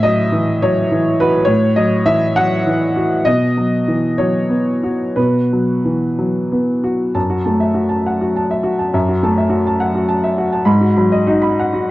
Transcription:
Already playing: A2 E5
0.03 F#3 D#5
0.32 E3
0.62 F#3 C#5
0.92 E3
1.20 F#4 B4
1.45 A2 C#5
1.76 F#3 D#5
2.06 E3 E5
2.36 F#3 F#5
2.67 E3
2.96 F#4
3.25 B2 D#5
3.57 F#3
3.88 E3
4.18 F#3 C#5
4.49 B3
4.83 F#4
5.16 B2 B4
5.53 F#3
5.85 E3
6.19 F#3
6.52 B3
6.84 F#4
7.15 F#2 A5
7.30 F#4
7.45 A3 A5
7.60 E5
7.74 F#4
7.89 A5
8.06 F#5
8.21 F#4
8.36 A5
8.51 E5
8.63 F#4
8.79 A5
8.94 F#2 E5
9.09 F#4
9.23 A3 A5
9.38 E5
9.50 F#4
9.67 A5
9.80 F#5
9.95 F#4
10.09 A5
10.24 E5
10.38 F#4
10.53 A5
10.65 G#2 B5
10.81 F#4
10.97 F#3 B5
11.12 D#5
11.27 D#4 F#4
11.42 B5
11.59 F#5
11.73 F#4

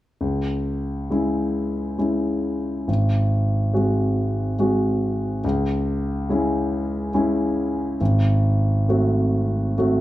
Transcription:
0.21 C#2
1.10 G#3 C#4 E4
1.98 G#3 C#4 E4
2.88 G#1
3.73 G#3 C4 F#4
4.59 G#3 C4 F#4
5.44 C#2
6.29 G#3 C#4 E4
7.14 G#3 C#4 E4
8.01 G#1
8.89 A3 C4 F#4
9.78 A3 C4 F#4

